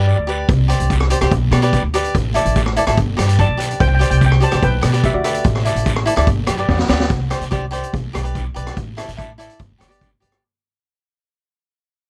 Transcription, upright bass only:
Already playing: G2
0.18 D2
0.48 C2
0.80 C2
1.21 C2
1.31 B1
1.51 B2
1.82 D2
2.14 A1
2.45 A1
2.87 A1
2.98 G1
3.18 G2
3.49 B1
3.80 C2
4.11 C2
4.53 C2
4.63 B1
4.83 B2
5.14 D2
5.45 A1
5.75 A1
6.17 D2
6.27 G1
6.49 F#2
6.69 E2
6.89 D2
7.10 C2
7.41 C2
7.93 B1
8.15 B1
8.56 B1
8.77 A1
9.08 A1
9.59 G1
9.81 G1
10.22 G1

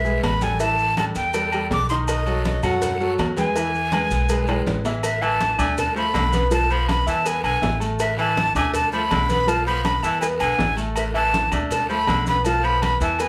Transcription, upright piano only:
0.04 G#3 G#4 B4
0.41 G3 G4 A4
0.60 E3 E4 E5
0.98 G3 G4 A4
1.34 G3 G4 A4
1.54 G3 G4 A4
1.91 D#3 D#4 D#5
2.27 F#3 F#4 A4
2.64 F#3 F#4 A4
3.00 F#3 F#4 A4
3.37 G#3 G#4 B4
3.56 E3 E4 E5
3.93 G#3 G#4 B4
4.29 G#3 G#4 B4
4.48 G#3 G#4 B4
4.85 E3 E4 E5
5.22 E3 E4 E5
5.59 D4 D5 D6
5.95 A3 A4 A5
6.33 B3 B4 B5
6.51 F3 F4 F5
6.69 B3 B4 B5
7.06 E4 E5 E6
7.24 B3 B4 B5
7.61 E4 E5 E6
7.80 A3 A4 A5
8.17 E3 E4 E5
8.55 D4 D5 D6
8.93 A3 A4 A5
9.29 B3 B4 B5
9.47 F3 F4 F5
9.66 B3 B4 B5
10.03 E4 E5 E6
10.21 B3 B4 B5
10.58 E4 E5 E6
10.76 A3 A4 A5
11.13 E3 E4 E5
11.52 D4 D5 D6
11.90 A3 A4 A5
12.27 B3 B4 B5
12.46 F3 F4 F5
12.64 B3 B4 B5
13.01 E4 E5 E6
13.20 B3 B4 B5

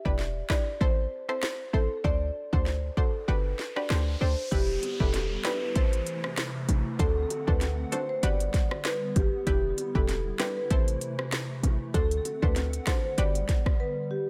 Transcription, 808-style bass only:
0.06 E1
0.81 A1
1.74 A1
2.05 D2
2.53 D2
3.28 G1
3.90 D2
4.21 D2
4.52 E1
5.00 E1
5.76 A1
6.69 A1
6.99 D2
7.48 D2
8.23 G1
9.16 G1
9.47 E1
9.95 E1
10.71 A1
11.63 A1
11.94 D2
12.43 D2
13.18 G1

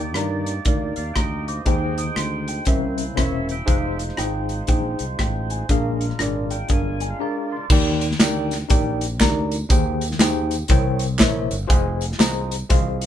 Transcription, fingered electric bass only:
Already playing: D#2
0.16 G2
0.66 D2
0.98 D#2
1.16 D2
1.66 D#2
2.17 D2
2.67 C2
3.18 E1
3.68 F1
4.19 G#1
4.68 A#1
5.00 C2
5.19 A1
5.69 A#1
6.20 G#1
6.70 G1
7.70 D#2
8.20 D2
8.70 A#1
9.21 D2
9.70 D#2
10.19 D#2
10.69 C2
11.20 A#1
11.51 G1
11.70 F1
12.19 C2
12.71 C2

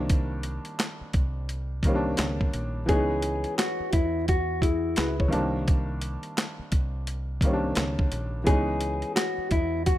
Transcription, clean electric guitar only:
2.89 G#4
3.58 F#4
3.93 E4
4.29 F#4
4.62 E4
8.47 G#4
9.16 F#4
9.52 E4
9.86 F#4

